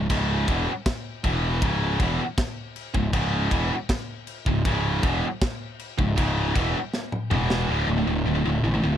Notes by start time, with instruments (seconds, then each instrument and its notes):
0.10 picked electric bass C#1, distorted electric guitar C#2 G#2 C#3, kick, crash
0.48 picked electric bass E1, distorted electric guitar E2 B2 E3, kick, crash
0.86 kick, snare, crash
1.24 picked electric bass E1, distorted electric guitar E2 B2 E3, kick, crash
1.62 picked electric bass C#1, distorted electric guitar C#2 G#2 C#3, kick, crash
2.00 picked electric bass E1, distorted electric guitar E2 B2 E3, kick, crash
2.38 kick, snare, crash
2.76 crash
2.94 picked electric bass C#1, distorted electric guitar C#2 G#2, kick
3.13 picked electric bass C#1, distorted electric guitar C#2 G#2 C#3, kick, crash
3.51 picked electric bass E1, distorted electric guitar E2 B2 E3, kick, crash
3.89 kick, snare, crash
4.27 crash
4.46 picked electric bass C#1, distorted electric guitar C#2 G#2, kick
4.65 picked electric bass C#1, distorted electric guitar C#2 G#2 C#3, kick, crash
5.03 picked electric bass E1, distorted electric guitar E2 B2 E3, kick, crash
5.41 kick, snare, crash
5.79 crash
5.99 picked electric bass C#1, distorted electric guitar C#2 G#2, kick
6.17 picked electric bass C#1, distorted electric guitar C#2 G#2 C#3, kick, crash
6.55 picked electric bass E1, distorted electric guitar E2 B2 E3, kick, crash
6.94 snare
7.12 mid tom
7.30 picked electric bass E1, distorted electric guitar E2 B2 E3, mid tom
7.50 snare
7.69 picked electric bass D1, distorted electric guitar D2 A2 D3
7.88 picked electric bass D1, distorted electric guitar D2 A2
7.98 distorted electric guitar D2 A2
8.07 picked electric bass D1, distorted electric guitar D2 A2
8.26 picked electric bass D1, distorted electric guitar D2 A2
8.35 distorted electric guitar D2 A2
8.45 picked electric bass D1, distorted electric guitar D2 A2
8.64 picked electric bass A1, distorted electric guitar D2 A2
8.74 distorted electric guitar D2 A2
8.83 picked electric bass D1, distorted electric guitar D2 A2